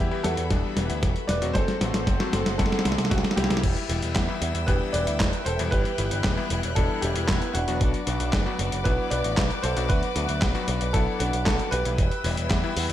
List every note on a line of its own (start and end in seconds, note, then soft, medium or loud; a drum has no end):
0.00 1.51 G3 medium
0.00 0.23 E4 medium
0.00 0.25 G4 medium
0.00 1.53 B4 medium
0.00 1.51 E5 medium
0.00 1.53 B5 medium
0.11 0.41 E3 loud
0.11 0.41 G3 medium
0.11 0.41 B3 medium
0.11 0.41 E4 loud
0.23 0.36 E2 loud
0.23 1.25 F#4 medium
0.23 1.31 A4 loud
0.23 snare medium
0.23 closed hi-hat medium
0.37 0.49 E2 medium
0.37 closed hi-hat soft
0.50 0.62 E1 loud
0.50 0.86 E3 medium
0.50 0.86 G3 medium
0.50 0.86 B3 medium
0.50 0.86 D4 loud
0.50 kick loud
0.50 snare medium
0.50 closed hi-hat medium
0.76 0.88 E1 medium
0.76 snare medium
0.76 closed hi-hat medium
0.89 1.01 D2 medium
0.89 1.08 E3 medium
0.89 1.08 G3 medium
0.89 1.08 B3 medium
0.89 1.08 E4 medium
0.89 closed hi-hat medium
1.03 1.14 E1 loud
1.03 kick loud
1.03 snare medium
1.03 closed hi-hat medium
1.16 closed hi-hat soft
1.27 1.40 E1 medium
1.27 1.53 B4 medium
1.27 1.55 D5 loud
1.27 snare medium
1.27 closed hi-hat medium
1.42 1.53 E1 medium
1.42 1.71 F#3 loud
1.42 1.71 A3 medium
1.42 1.71 C4 medium
1.42 1.71 F#4 loud
1.42 closed hi-hat medium
1.53 1.66 F#1 loud
1.53 3.61 A4 medium
1.53 2.56 A4 medium
1.53 2.54 C5 loud
1.53 3.61 C5 medium
1.53 3.61 F#5 medium
1.53 3.61 C6 medium
1.53 kick loud
1.53 snare medium
1.53 closed hi-hat medium
1.68 snare medium
1.68 closed hi-hat soft
1.81 1.92 A1 medium
1.81 2.17 F#3 medium
1.81 2.17 A3 medium
1.81 2.17 C4 medium
1.81 2.17 F#4 medium
1.81 snare medium
1.81 closed hi-hat medium
1.94 2.05 A1 medium
1.94 snare medium
1.94 closed hi-hat medium
2.07 2.18 F#1 loud
2.07 kick loud
2.07 snare medium
2.07 closed hi-hat medium
2.20 2.50 F#3 medium
2.20 2.50 A3 medium
2.20 2.50 C4 medium
2.20 2.50 F#4 loud
2.20 snare medium
2.33 2.44 F#1 loud
2.33 snare loud
2.33 closed hi-hat medium
2.46 2.57 F#1 medium
2.46 snare medium
2.46 closed hi-hat medium
2.58 2.70 F#1 loud
2.58 2.95 F#3 medium
2.58 2.95 A3 medium
2.58 2.95 C4 medium
2.58 2.95 E4 loud
2.58 3.09 F#4 medium
2.58 3.33 A4 medium
2.58 kick loud
2.58 snare loud
2.58 closed hi-hat medium
2.66 snare medium
2.72 snare medium
2.79 snare medium
2.85 2.96 C2 medium
2.85 snare loud
2.85 closed hi-hat medium
2.92 snare medium
2.98 3.09 C2 medium
2.98 snare medium
2.98 closed hi-hat soft
3.05 snare medium
3.10 3.23 C2 loud
3.10 3.47 F#3 medium
3.10 3.47 A3 medium
3.10 3.47 C4 medium
3.10 3.18 C4 medium
3.10 3.16 F#4 medium
3.10 3.47 F#4 medium
3.10 kick loud
3.10 snare loud
3.10 closed hi-hat medium
3.18 snare loud
3.24 snare loud
3.24 closed hi-hat soft
3.31 snare medium
3.36 3.48 C2 medium
3.36 4.64 E4 medium
3.36 4.67 G4 medium
3.36 snare loud
3.36 closed hi-hat medium
3.44 snare loud
3.50 3.62 C2 medium
3.50 3.69 E3 medium
3.50 3.69 G3 medium
3.50 3.69 B3 medium
3.50 3.69 E4 medium
3.50 snare loud
3.50 closed hi-hat medium
3.57 snare loud
3.63 3.75 E1 loud
3.63 12.93 B4 medium
3.63 7.77 E5 medium
3.63 7.77 G5 medium
3.63 5.70 E6 medium
3.63 kick loud
3.63 closed hi-hat medium
3.63 crash loud
3.76 closed hi-hat soft
3.89 4.01 E1 loud
3.89 4.26 E3 medium
3.89 4.26 G3 medium
3.89 4.26 B3 medium
3.89 4.26 E4 medium
3.89 closed hi-hat medium
4.02 4.14 E1 medium
4.02 closed hi-hat medium
4.16 4.27 E2 loud
4.16 kick loud
4.16 snare loud
4.16 clap loud
4.16 closed hi-hat medium
4.29 4.58 E3 loud
4.29 4.58 G3 medium
4.29 4.58 B3 medium
4.29 4.58 E4 loud
4.41 4.53 E2 medium
4.41 closed hi-hat medium
4.54 4.66 E2 medium
4.54 closed hi-hat medium
4.66 4.79 E1 loud
4.66 5.04 E3 medium
4.66 5.04 G3 medium
4.66 5.04 B3 medium
4.66 5.04 D4 loud
4.66 4.93 G4 medium
4.66 4.91 B4 medium
4.66 kick loud
4.66 closed hi-hat medium
4.93 5.05 E1 medium
4.93 5.43 B4 medium
4.93 5.42 D5 loud
4.93 closed hi-hat medium
5.07 5.18 D2 medium
5.07 5.26 E3 medium
5.07 5.26 G3 medium
5.07 5.26 B3 medium
5.07 5.26 E4 medium
5.07 closed hi-hat medium
5.20 5.31 E1 loud
5.20 kick loud
5.20 snare loud
5.20 clap loud
5.20 closed hi-hat medium
5.33 closed hi-hat soft
5.45 5.57 E1 medium
5.45 5.71 A4 medium
5.45 5.72 C5 medium
5.45 closed hi-hat medium
5.59 5.70 E1 medium
5.59 5.89 E3 loud
5.59 5.89 G3 medium
5.59 5.89 B3 medium
5.59 5.89 E4 loud
5.59 closed hi-hat medium
5.71 5.83 G1 loud
5.71 6.73 G4 medium
5.71 6.79 B4 loud
5.71 7.79 F#6 medium
5.71 kick loud
5.71 closed hi-hat medium
5.85 closed hi-hat soft
5.98 6.10 G1 loud
5.98 6.34 E3 medium
5.98 6.34 G3 medium
5.98 6.34 B3 medium
5.98 6.34 E4 medium
5.98 closed hi-hat medium
6.11 6.23 G1 medium
6.11 closed hi-hat medium
6.24 6.36 E1 loud
6.24 kick loud
6.24 snare loud
6.24 clap loud
6.24 closed hi-hat medium
6.38 6.67 E3 loud
6.38 6.67 G3 medium
6.38 6.67 B3 medium
6.38 6.67 E4 loud
6.50 6.62 E1 medium
6.50 closed hi-hat medium
6.63 6.75 E1 medium
6.63 closed hi-hat medium
6.75 6.88 E1 loud
6.75 7.13 E3 medium
6.75 7.13 G3 medium
6.75 7.13 B3 medium
6.75 7.13 D4 loud
6.75 7.01 E4 medium
6.75 7.03 A4 loud
6.75 kick loud
6.75 closed hi-hat medium
7.01 7.14 E1 medium
7.01 7.26 E4 medium
7.01 7.26 G4 medium
7.01 closed hi-hat medium
7.16 7.27 E1 medium
7.16 7.34 E3 medium
7.16 7.34 G3 medium
7.16 7.34 B3 medium
7.16 7.34 E4 medium
7.16 closed hi-hat medium
7.27 7.40 E1 loud
7.27 7.53 B3 medium
7.27 7.55 E4 medium
7.27 kick loud
7.27 snare loud
7.27 clap loud
7.27 closed hi-hat medium
7.42 closed hi-hat soft
7.53 7.66 E1 medium
7.53 8.82 D4 medium
7.53 8.81 F#4 loud
7.53 closed hi-hat medium
7.68 7.79 E1 medium
7.68 7.98 F#3 loud
7.68 7.98 B3 medium
7.68 7.98 D4 medium
7.68 7.98 F#4 loud
7.68 closed hi-hat medium
7.81 7.92 B1 loud
7.81 11.94 D5 medium
7.81 11.94 F#5 medium
7.81 11.94 D6 medium
7.81 kick loud
7.81 closed hi-hat medium
7.94 closed hi-hat soft
8.07 8.18 B1 loud
8.07 8.43 F#3 medium
8.07 8.43 B3 medium
8.07 8.43 D4 medium
8.07 8.43 F#4 medium
8.07 closed hi-hat medium
8.20 8.31 B1 medium
8.20 closed hi-hat medium
8.33 8.44 F#1 loud
8.33 kick loud
8.33 snare loud
8.33 clap loud
8.33 closed hi-hat medium
8.46 8.76 F#3 loud
8.46 8.76 B3 medium
8.46 8.76 D4 medium
8.46 8.76 F#4 loud
8.59 8.70 F#1 medium
8.59 closed hi-hat medium
8.72 8.84 F#1 medium
8.72 closed hi-hat medium
8.84 8.97 B1 loud
8.84 9.21 F#3 medium
8.84 9.21 B3 medium
8.84 9.21 D4 medium
8.84 9.21 E4 loud
8.84 9.10 F#4 medium
8.84 9.09 B4 loud
8.84 kick loud
8.84 closed hi-hat medium
9.10 9.23 B1 medium
9.10 9.60 B4 medium
9.10 9.65 D5 loud
9.10 closed hi-hat medium
9.24 9.36 A1 medium
9.24 9.43 F#3 medium
9.24 9.43 B3 medium
9.24 9.43 D4 medium
9.24 9.43 F#4 medium
9.24 closed hi-hat medium
9.37 9.49 B1 loud
9.37 kick loud
9.37 snare loud
9.37 clap loud
9.37 closed hi-hat medium
9.50 closed hi-hat soft
9.62 9.75 B1 loud
9.62 9.88 A4 medium
9.62 9.90 C5 loud
9.62 closed hi-hat medium
9.77 9.88 B1 medium
9.77 10.06 F#3 medium
9.77 10.06 B3 medium
9.77 10.06 D4 medium
9.77 10.06 F#4 loud
9.77 closed hi-hat medium
9.89 10.01 D2 loud
9.89 10.91 F#4 medium
9.89 10.97 B4 loud
9.89 kick loud
9.89 closed hi-hat medium
10.03 closed hi-hat soft
10.16 10.27 D2 medium
10.16 10.52 F#3 medium
10.16 10.52 B3 medium
10.16 10.52 D4 medium
10.16 10.52 F#4 medium
10.16 closed hi-hat medium
10.29 10.40 D2 medium
10.29 closed hi-hat medium
10.42 10.53 B1 loud
10.42 kick loud
10.42 snare loud
10.42 clap medium
10.42 closed hi-hat medium
10.55 10.84 F#3 loud
10.55 10.85 B3 medium
10.55 10.85 D4 medium
10.55 10.84 F#4 loud
10.55 closed hi-hat soft
10.68 10.79 B1 loud
10.68 closed hi-hat medium
10.81 10.92 B1 medium
10.81 closed hi-hat medium
10.93 11.05 B1 loud
10.93 11.30 F#3 medium
10.93 11.30 B3 medium
10.93 11.30 D4 medium
10.93 11.30 E4 loud
10.93 11.18 F#4 medium
10.93 11.20 A4 loud
10.93 kick loud
10.93 closed hi-hat medium
11.19 11.31 B1 medium
11.19 11.45 D4 medium
11.19 11.46 F#4 medium
11.19 closed hi-hat medium
11.33 11.44 B1 medium
11.33 closed hi-hat soft
11.45 11.57 B1 loud
11.45 11.82 F#3 medium
11.45 11.82 B3 medium
11.45 11.82 D4 medium
11.45 11.82 F#4 medium
11.45 11.71 F#4 medium
11.45 11.72 A4 loud
11.45 kick loud
11.45 snare loud
11.45 clap loud
11.45 closed hi-hat medium
11.59 closed hi-hat soft
11.71 11.83 B1 medium
11.71 12.93 G4 medium
11.71 12.93 B4 loud
11.71 closed hi-hat medium
11.85 11.96 B1 medium
11.85 12.04 E3 medium
11.85 12.04 G3 medium
11.85 12.04 B3 medium
11.85 12.04 E4 medium
11.85 closed hi-hat medium
11.98 12.10 E1 loud
11.98 12.93 E5 medium
11.98 12.93 G5 medium
11.98 12.93 E6 medium
11.98 kick loud
11.98 closed hi-hat medium
12.11 closed hi-hat soft
12.24 12.36 E1 loud
12.24 12.60 E3 medium
12.24 12.60 G3 medium
12.24 12.60 B3 medium
12.24 12.60 E4 medium
12.24 open hi-hat loud
12.37 12.49 E1 medium
12.37 closed hi-hat medium
12.50 12.62 E2 medium
12.50 kick loud
12.50 snare loud
12.50 clap medium
12.50 closed hi-hat medium
12.63 12.93 E3 medium
12.63 12.93 G3 medium
12.63 12.93 B3 medium
12.63 12.93 E4 loud
12.76 12.88 E2 medium
12.76 open hi-hat medium
12.89 12.93 E2 medium
12.89 closed hi-hat medium